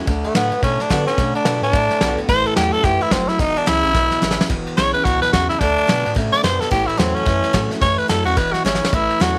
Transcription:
0.07 D2 D3 A3, kick, ride
0.24 D2 A3, ride
0.35 A2 D3 A3 B3 F#4, snare, ride
0.51 A2 B3 F#4, ride
0.62 A2 B2 D3 A3 C#4, kick, ride
0.80 B2 D4, snare, ride
0.90 D3 A3 B3 F#4, kick, snare, ride
1.07 D3 B3 C#4 F#4, snare, ride
1.17 B2 D3 A3, kick, snare, ride
1.35 B2 D4, ride
1.45 B2 D3 A3 B3 F#4, snare, ride
1.62 A2 B3 D4 F#4, ride
1.73 A2 D3 A3, kick, ride
1.90 A2, snare, ride
2.01 B1 D3 A3 B3 F#4, snare, ride
2.18 B1 B3 F#4, ride
2.28 A1 A2 E3 C5, kick, snare, ride
2.46 A1 A4, ride
2.56 E2 A2 E3 F#3 A3 C#4 F#4 G4, snare, ride
2.73 E2 C#4 F#4 A4, ride
2.83 F#2 G#2 A2 E3 G4, kick, snare, ride
3.01 F#2 E4, ride
3.11 F#1 F#2 A2 F#3 C4, kick, snare, ride
3.29 F#1 E4, snare, ride
3.39 E1 E2 B2 D#4, kick, snare, ride
3.56 E1 D4, ride
3.66 C#2 E2 C#3 E3 G#3 C#4 E4, snare, ride
3.83 B1 C#4 E4, ride
3.94 B1 E2 B2, kick, snare, ride
4.11 B1, snare, ride
4.22 G#1 E2 C#3 E3 G#3 C#4 E4, snare
4.31 snare
4.38 G#1 C#4 E4, snare
4.50 E1 E2 B2, kick, snare, ride
4.67 E1, ride
4.77 B1 E2 C#3 E3 G#3 C#4 E4 C#5, snare, ride
4.93 B1 C#4 E4 B4, ride
5.05 C#2 E2 B2 F#4, kick, snare, ride
5.22 C#2 B4, snare, ride
5.33 E2 C#3 F#4, kick, snare, ride
5.49 E2 E4, snare, ride
5.59 D2 D3 A3 D4, kick, snare, ride
5.77 D2, ride
5.87 B2 D3 A3 B3 F#4, snare, ride
6.05 A2 B3 F#4, ride
6.15 A2 C#3 D3 A3, kick, ride
6.33 A2 D5, snare, ride
6.43 F#2 B2 D3 B3 C5, snare, ride
6.60 F#2 A4, snare, ride
6.71 A1 A2 E3 G4, kick, snare, ride
6.87 A1 E4, ride
6.97 E2 A2 E3 F#3 A3 C4 C#4 F#4, snare, ride
7.15 E2 C#4, ride
7.26 E2 F#2 A2 E3, kick, snare, ride
7.43 F#2, snare, ride
7.53 A2 E3 F#3 A3 C#4 F#4, kick, snare, ride
7.71 A2 C#4 F#4, snare, ride
7.82 F#2 A2 E3 C#5, kick, snare, ride
7.98 F#2 B4, ride
8.08 F#2 A2 E3 F#3 A3 C#4 F#4 A4, snare, ride
8.24 E2 C#4 F#4, ride
8.37 E1 E2 B2 B4, kick, snare, ride
8.53 E1 F#4, snare, ride
8.65 G#1 E2 C#3 E3 G#3 C#4 E4, snare
8.75 snare
8.81 G#1 C#4 E4, snare
8.93 A1 A2 E3 E4, kick, ride
9.09 A1, ride
9.20 E2 A2 E3 F#3 A3 C#4 F#4, snare, ride

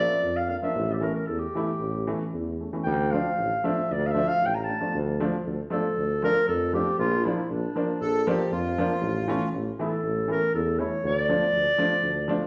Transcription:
Already playing: F3 A#3 C#4 D5
0.22 F2
0.37 F5
0.49 A#3 D4 F5
0.62 F3 A#3 D4 E5
0.75 A1
0.91 G4 A4
0.96 A4
1.01 E3 A3 C#4 A#4
1.15 A#4
1.27 E2 A4
1.39 G4
1.55 E3 A3 E4
1.80 A1
2.07 E3 A3 C#4
2.33 E2
2.60 A3 C#4
2.73 E3 A3 C#4
2.84 D2 G5
3.11 F3 A3 D4 F5
3.38 A1
3.64 F3 A3 D4 E5
3.91 D2 D5
4.07 F5
4.11 F3 E5
4.16 A3 D4
4.28 F5
4.42 A1
4.46 G5
4.55 A#5
4.64 A3 A5
4.69 D4
4.81 F3 A3 D4
4.95 D2
5.20 F3 A3 D4
5.47 D2
5.70 F3 A3 D4 A4
5.97 D2
6.22 F3 A3 D4 A#4
6.48 F2 A4
6.73 F3 A3 D4 G4
6.98 A#1 F4
7.24 F3 A#3 D4 E4
7.50 A#1 D4
7.76 F3 A#3 D4
8.01 A#1 A4
8.27 F3 A#3 D4 G4
8.52 F2 F4
8.78 F3 A#3 D4
9.02 A1
9.28 E3 A3 C#4
9.54 A1
9.79 E3 A3 E4 A4
10.03 A1
10.28 E3 A3 C#4 A#4
10.55 E2 A4
10.79 E3 A3 E4 C#5
11.04 D2 D5
11.29 F3 A3 D4
11.54 D2
11.78 F3 A3 D4
12.03 D2
12.28 F3 A3 D4

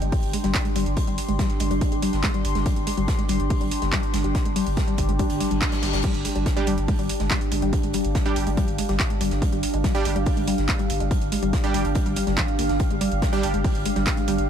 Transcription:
Already playing: D4 G4 C6
0.02 G1 G#3, closed hi-hat
0.12 G3, kick, closed hi-hat, open hi-hat
0.23 G1, closed hi-hat
0.33 G#3, closed hi-hat, open hi-hat
0.44 G1 G3, snare, closed hi-hat
0.54 kick, snare, clap, closed hi-hat
0.65 G#3, closed hi-hat
0.76 G1 G3, closed hi-hat, open hi-hat
0.86 G1, closed hi-hat
0.97 G#3, kick, closed hi-hat
1.07 G1 G3, closed hi-hat
1.18 closed hi-hat, open hi-hat
1.28 G1 G#3, closed hi-hat
1.39 G3, kick, snare, closed hi-hat
1.50 closed hi-hat
1.60 G1 G#3, closed hi-hat, open hi-hat
1.71 G1 G3, closed hi-hat
1.81 kick, closed hi-hat
1.92 G1 G#3, closed hi-hat
2.02 G3, closed hi-hat, open hi-hat
2.13 G1, snare, closed hi-hat
2.23 G#3, kick, snare, clap, closed hi-hat
2.34 G3, closed hi-hat
2.45 G1, closed hi-hat, open hi-hat
2.55 G1 G#3, snare, closed hi-hat
2.66 G3, kick, closed hi-hat
2.76 G1, closed hi-hat
2.87 G#3, closed hi-hat, open hi-hat
2.97 G1 G3, closed hi-hat
3.08 kick, snare, closed hi-hat
3.19 G#3, closed hi-hat
3.29 G1 G3, closed hi-hat, open hi-hat
3.40 G1, closed hi-hat
3.50 G#3, kick, closed hi-hat, open hi-hat
3.61 G1 G3, closed hi-hat
3.71 closed hi-hat, open hi-hat
3.82 G1 G#3, snare, closed hi-hat
3.93 G3, kick, snare, clap, closed hi-hat
4.03 closed hi-hat
4.14 G1 G#3, snare, closed hi-hat, open hi-hat
4.24 G1 G3, closed hi-hat
4.35 kick, snare, closed hi-hat
4.45 G1 G#3, closed hi-hat
4.56 G3, open hi-hat
4.67 G1, closed hi-hat
4.77 G#3, kick, snare, closed hi-hat
4.88 G3, closed hi-hat
4.98 G1, kick, closed hi-hat, open hi-hat
5.09 G1 G#3, closed hi-hat
5.19 G3, kick, closed hi-hat, reverse cymbal
5.30 G1, closed hi-hat
5.40 G3, closed hi-hat, open hi-hat
5.51 G1 G3, closed hi-hat
5.61 F5, kick, snare, clap, closed hi-hat
5.72 G3, snare, closed hi-hat
5.82 G1 G3, snare, closed hi-hat, open hi-hat
5.93 G1 G3, snare, closed hi-hat
6.03 G3, kick, closed hi-hat, crash
6.14 G1, closed hi-hat
6.25 G#3, closed hi-hat, open hi-hat
6.35 G1 G3, closed hi-hat
6.46 kick, snare, closed hi-hat
6.57 G3 G#3 D4 G4, closed hi-hat
6.67 G1 G3, closed hi-hat, open hi-hat
6.78 G1, closed hi-hat
6.88 G#3, kick, closed hi-hat, open hi-hat
6.99 G1 G3, closed hi-hat
7.09 closed hi-hat, open hi-hat
7.20 G1 G#3, snare, closed hi-hat
7.30 G3, kick, snare, clap, closed hi-hat
7.41 closed hi-hat
7.52 G1 G#3, closed hi-hat, open hi-hat
7.62 G1 G3, closed hi-hat
7.73 kick, closed hi-hat
7.83 G1 G#3, closed hi-hat
7.93 G3, closed hi-hat, open hi-hat
8.04 G1, closed hi-hat
8.15 G#3, kick, snare, closed hi-hat
8.26 G3 D4 G4, closed hi-hat
8.36 G1, closed hi-hat, open hi-hat
8.47 G1 G#3, closed hi-hat
8.57 G3, kick, closed hi-hat
8.68 G1, closed hi-hat
8.78 G#3, closed hi-hat, open hi-hat
8.89 G1 G3, snare, closed hi-hat
8.99 kick, snare, clap, closed hi-hat
9.10 G#3, closed hi-hat
9.21 G1 G3, closed hi-hat, open hi-hat
9.31 G1, snare, closed hi-hat
9.42 G#3, kick, closed hi-hat
9.52 G1 G3, closed hi-hat
9.63 closed hi-hat, open hi-hat
9.74 G1 G#3, closed hi-hat
9.84 G3, kick, snare, closed hi-hat
9.95 G3 D4 G4, closed hi-hat
10.05 G1 G#3, closed hi-hat, open hi-hat
10.16 G1 G3, closed hi-hat
10.26 kick, closed hi-hat, open hi-hat
10.37 G1 G#3, closed hi-hat
10.47 G3, closed hi-hat, open hi-hat
10.58 G1, snare, closed hi-hat
10.69 G#3, kick, snare, clap, closed hi-hat
10.79 G3, closed hi-hat
10.90 G1, closed hi-hat, open hi-hat
11.00 G1 G#3, closed hi-hat
11.11 G3, kick, closed hi-hat
11.21 G1, closed hi-hat
11.32 G#3, closed hi-hat, open hi-hat
11.43 G1 G3, closed hi-hat
11.53 kick, snare, closed hi-hat
11.64 G3 G#3 D4 G4, closed hi-hat
11.74 G1 G3, closed hi-hat, open hi-hat
11.84 G1, closed hi-hat
11.95 G#3, kick, closed hi-hat
12.06 G1 G3, closed hi-hat
12.16 G3, closed hi-hat, open hi-hat
12.27 G1 G3, snare, closed hi-hat
12.37 F3, kick, snare, clap, closed hi-hat
12.48 closed hi-hat
12.59 G1 A#3, closed hi-hat, open hi-hat
12.69 G1 D4, snare, closed hi-hat
12.79 kick, closed hi-hat
12.90 G1 G#3, closed hi-hat
13.01 G3, closed hi-hat, open hi-hat
13.12 G1, closed hi-hat
13.22 G#3, kick, snare, closed hi-hat
13.33 G3 D4 G4, closed hi-hat
13.43 G1, closed hi-hat, open hi-hat
13.54 G1 G#3, closed hi-hat
13.64 G3, kick, closed hi-hat, open hi-hat
13.75 G1, closed hi-hat
13.85 G#3, closed hi-hat, open hi-hat
13.96 G1 G3, snare, closed hi-hat
14.06 kick, snare, clap, closed hi-hat
14.17 G#3, closed hi-hat
14.28 G1 G3, closed hi-hat, open hi-hat
14.38 G1, closed hi-hat

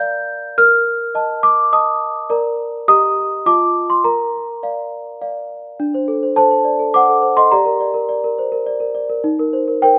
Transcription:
Already playing: A#4 A#5 G6
0.00 D5 F5
0.58 A#4 F6
1.15 D#5 A5
1.43 D6
1.73 D#5 A5 D#6
2.30 A#4 D5 A#5
2.88 G4 D#5 A#5 D#6
3.46 F4 D#5 A5 D6
3.90 C6
4.04 A#4 A#5
4.63 D5 F5
5.22 D5 F5
5.80 D4
5.94 C5
6.08 A4
6.23 C5
6.36 A4 C5 A5
6.51 C5
6.65 D5
6.79 A4
6.94 C5 F#5 D6
7.09 A4
7.22 C5
7.37 A4 D#5 C6
7.52 G4 D5 A#5
7.65 A#4
7.80 D5
7.94 A#4
8.09 D5
8.24 A#4
8.39 C5
8.52 A#4
8.67 D5
8.80 A#4
8.95 D5
9.10 A#4
9.24 D#4
9.39 A#4
9.53 C5
9.68 A#4
9.82 A#4 C5 G5

